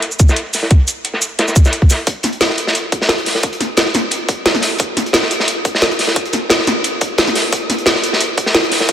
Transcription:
0.02 closed hi-hat medium
0.11 shaker soft
0.19 kick medium
0.19 closed hi-hat medium
0.19 shaker medium
0.28 snare medium
0.28 shaker soft
0.36 closed hi-hat medium
0.46 closed hi-hat soft
0.53 snare soft
0.53 open hi-hat medium
0.53 shaker medium
0.63 snare soft
0.71 kick loud
0.71 closed hi-hat medium
0.80 closed hi-hat soft
0.88 closed hi-hat medium
0.88 shaker medium
1.05 closed hi-hat medium
1.14 snare soft
1.22 closed hi-hat medium
1.22 shaker medium
1.39 snare medium
1.39 closed hi-hat medium
1.48 snare soft
1.48 shaker soft
1.55 kick medium
1.55 closed hi-hat medium
1.55 shaker medium
1.65 snare medium
1.65 shaker soft
1.72 closed hi-hat medium
1.82 kick medium
1.82 closed hi-hat soft
1.90 snare soft
1.90 closed hi-hat medium
1.90 open hi-hat medium
1.90 shaker medium
2.07 kick loud
2.07 closed hi-hat medium
2.23 snare soft
2.23 closed hi-hat medium
2.33 closed hi-hat soft
2.41 snare loud
2.41 closed hi-hat medium
2.50 snare medium
2.58 closed hi-hat medium
2.67 snare medium
2.75 closed hi-hat medium
2.92 kick loud
2.92 closed hi-hat medium
3.02 snare medium
3.09 snare loud
3.09 closed hi-hat medium
3.18 closed hi-hat soft
3.25 snare soft
3.25 open hi-hat medium
3.35 snare soft
3.43 kick loud
3.43 closed hi-hat medium
3.53 closed hi-hat soft
3.61 snare soft
3.61 closed hi-hat medium
3.77 snare loud
3.77 closed hi-hat medium
3.86 snare soft
3.94 snare medium
3.94 closed hi-hat medium
4.11 closed hi-hat medium
4.29 kick loud
4.29 closed hi-hat medium
4.46 snare loud
4.46 closed hi-hat medium
4.55 snare soft
4.55 closed hi-hat soft
4.61 snare soft
4.61 closed hi-hat medium
4.61 open hi-hat medium
4.78 kick loud
4.78 closed hi-hat medium
4.97 snare soft
4.97 closed hi-hat medium
5.06 closed hi-hat soft
5.13 snare loud
5.13 closed hi-hat medium
5.22 snare medium
5.31 closed hi-hat medium
5.40 snare medium
5.48 closed hi-hat medium
5.65 kick loud
5.65 closed hi-hat medium
5.75 snare medium
5.81 snare loud
5.81 closed hi-hat medium
5.91 closed hi-hat soft
5.99 snare soft
5.99 open hi-hat medium
6.08 snare soft
6.16 kick loud
6.16 closed hi-hat medium
6.25 closed hi-hat soft
6.33 snare soft
6.33 closed hi-hat medium
6.50 snare loud
6.50 closed hi-hat medium
6.60 snare soft
6.67 snare medium
6.67 closed hi-hat medium
6.84 closed hi-hat medium
7.01 kick loud
7.01 closed hi-hat medium
7.18 snare loud
7.18 closed hi-hat medium
7.27 snare soft
7.27 closed hi-hat soft
7.35 snare soft
7.35 closed hi-hat medium
7.35 open hi-hat medium
7.53 kick loud
7.53 closed hi-hat medium
7.70 snare soft
7.70 closed hi-hat medium
7.78 closed hi-hat soft
7.86 snare loud
7.86 closed hi-hat medium
7.95 snare medium
8.04 closed hi-hat medium
8.13 snare medium
8.20 closed hi-hat medium
8.37 kick loud
8.37 closed hi-hat medium
8.46 snare medium
8.54 snare loud
8.54 closed hi-hat medium
8.64 closed hi-hat soft
8.71 snare soft
8.71 open hi-hat medium
8.80 snare soft
8.89 kick loud
8.89 closed hi-hat medium

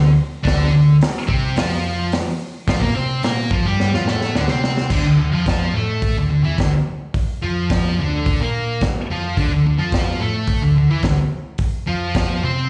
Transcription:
0.00 0.16 D2 medium
0.00 0.11 D3 medium
0.43 0.71 D2 medium
0.43 0.71 D3 medium
0.43 0.72 D4 loud
0.43 kick medium
0.43 open hi-hat medium
0.47 snare loud
0.72 0.99 D2 medium
0.72 0.96 D3 medium
1.01 snare loud
1.01 open hi-hat medium
1.27 1.55 C2 loud
1.27 1.55 C3 loud
1.27 1.56 C4 loud
1.27 kick medium
1.56 2.08 F2 medium
1.56 2.12 F3 medium
1.56 2.13 F4 loud
1.56 snare loud
1.56 open hi-hat medium
2.12 snare loud
2.12 open hi-hat medium
2.67 2.81 F2 medium
2.67 2.81 F3 medium
2.67 2.82 F4 medium
2.67 kick loud
2.67 snare loud
2.67 open hi-hat medium
2.80 2.95 A#2 medium
2.80 2.94 A#3 medium
2.80 2.95 A#4 medium
2.80 kick medium
2.96 3.23 C3 loud
2.96 3.23 C4 medium
2.96 3.23 C5 loud
3.23 3.50 A#2 medium
3.23 3.52 A#3 loud
3.23 3.52 A#4 medium
3.23 snare loud
3.23 open hi-hat medium
3.50 3.63 F2 medium
3.50 3.65 F3 medium
3.50 3.65 F4 medium
3.50 kick loud
3.64 3.91 G2 medium
3.64 3.93 G3 medium
3.64 3.93 G4 medium
3.80 snare medium
3.93 4.05 F2 medium
3.93 4.07 F3 medium
3.93 4.07 F4 medium
3.93 snare medium
4.05 4.32 A2 loud
4.05 4.35 A3 medium
4.05 snare medium
4.09 4.36 A4 loud
4.21 snare medium
4.34 4.47 D2 loud
4.34 4.49 D3 loud
4.34 4.49 D4 loud
4.34 snare medium
4.48 4.88 C3 medium
4.48 4.90 C4 medium
4.48 4.91 C5 loud
4.48 snare medium
4.64 snare medium
4.77 snare medium
4.90 5.02 D2 medium
4.90 5.05 D3 medium
4.90 5.05 D4 medium
4.90 kick loud
4.90 crash loud
5.02 5.16 D2 medium
5.02 5.17 D3 medium
5.16 5.30 D2 medium
5.16 5.31 D3 medium
5.31 5.71 F2 medium
5.31 5.73 F3 medium
5.31 5.74 F4 medium
5.46 kick loud
5.46 snare loud
5.46 open hi-hat medium
5.74 6.13 A2 medium
5.74 6.16 A3 medium
5.74 6.17 A4 medium
6.02 kick loud
6.02 open hi-hat medium
6.16 6.29 D2 medium
6.16 6.29 D3 medium
6.31 6.42 D2 medium
6.31 6.44 D3 medium
6.43 6.56 E2 loud
6.43 6.58 E3 medium
6.43 6.58 E4 medium
6.58 6.72 D2 medium
6.58 6.73 D3 medium
6.58 kick loud
6.58 snare loud
6.58 open hi-hat medium
7.14 kick loud
7.14 open hi-hat medium
7.43 7.94 F2 medium
7.43 7.98 F3 medium
7.43 7.98 F4 medium
7.70 kick loud
7.70 snare loud
7.70 open hi-hat medium
7.99 8.37 D2 medium
7.99 8.40 D3 medium
7.99 8.40 D4 loud
8.26 kick loud
8.26 open hi-hat soft
8.40 8.79 A#2 medium
8.40 8.81 A#3 medium
8.40 8.82 A#4 medium
8.81 muted distorted electric guitar stroke medium
8.81 kick loud
8.81 snare loud
8.81 open hi-hat soft
9.10 9.35 F2 medium
9.10 9.37 F3 medium
9.10 9.37 F4 loud
9.37 9.49 D2 medium
9.37 9.50 D3 medium
9.37 9.51 D4 medium
9.37 kick medium
9.37 open hi-hat soft
9.49 9.63 D2 medium
9.49 9.65 D3 medium
9.63 9.77 D2 medium
9.63 9.78 D3 medium
9.78 10.17 F2 loud
9.78 10.19 F3 medium
9.78 10.20 F4 loud
9.92 kick loud
9.92 snare loud
9.92 open hi-hat medium
10.20 10.59 A2 medium
10.20 10.61 A3 medium
10.20 10.62 A4 loud
10.47 kick loud
10.47 open hi-hat medium
10.61 10.74 D2 medium
10.61 10.76 D3 medium
10.76 10.88 D2 medium
10.76 10.90 D3 medium
10.89 11.02 E2 loud
10.89 11.04 E3 medium
10.89 11.04 E4 loud
11.03 11.17 D2 medium
11.03 11.18 D3 medium
11.03 kick medium
11.03 snare loud
11.03 open hi-hat medium
11.58 kick loud
11.58 open hi-hat medium
11.87 12.39 F2 medium
11.87 12.42 F3 medium
11.87 12.43 F4 medium
12.15 kick loud
12.15 snare loud
12.15 open hi-hat medium
12.43 12.70 C3 medium
12.43 12.70 C4 medium
12.43 12.70 C5 medium

